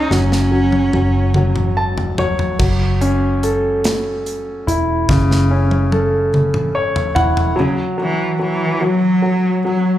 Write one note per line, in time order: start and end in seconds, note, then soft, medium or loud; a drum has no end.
0.00 0.12 C#4 soft
0.00 0.13 D#4 medium
0.00 0.12 G#4 medium
0.11 0.89 F#1 medium
0.11 0.50 F#3 medium
0.11 1.77 C#4 medium
0.11 snare soft
0.32 snare soft
0.52 0.92 F#3 medium
0.72 high tom medium
0.93 2.55 F#1 medium
0.93 1.34 F#3 soft
0.93 high tom medium
1.34 2.17 F#3 medium
1.34 mid tom medium
1.56 mid tom medium
1.77 2.15 A5 medium
1.98 floor tom medium
2.18 2.58 F#3 soft
2.18 2.57 C#5 medium
2.18 floor tom medium
2.39 floor tom medium
2.59 4.63 F#1 medium
2.59 5.04 F#3 medium
2.59 kick medium
2.59 crash medium
3.01 4.63 C#4 medium
3.01 closed hi-hat soft
3.43 5.05 A4 medium
3.43 closed hi-hat medium
3.84 snare medium
3.84 closed hi-hat medium
4.26 closed hi-hat soft
4.67 5.06 E1 medium
4.67 6.29 E4 medium
4.67 closed hi-hat medium
5.09 7.12 F#1 loud
5.09 7.53 C#3 medium
5.09 kick medium
5.09 snare medium
5.31 snare soft
5.51 7.12 C#4 medium
5.71 high tom medium
5.92 7.53 A4 medium
5.92 high tom medium
6.34 mid tom medium
6.54 mid tom medium
6.75 7.13 C#5 medium
6.96 floor tom medium
7.15 7.55 E1 medium
7.15 7.56 E4 soft
7.15 7.54 F#5 medium
7.15 floor tom medium
7.37 floor tom medium
7.56 7.77 C#3 medium
7.56 7.96 F#3 medium
7.98 8.38 E3 medium
7.98 8.38 F#3 medium
8.39 8.84 E3 medium
8.39 8.79 F#3 medium
8.81 9.21 F#3 medium
8.81 9.65 F#3 loud
9.22 9.63 F#3 medium
9.65 9.98 F#3 medium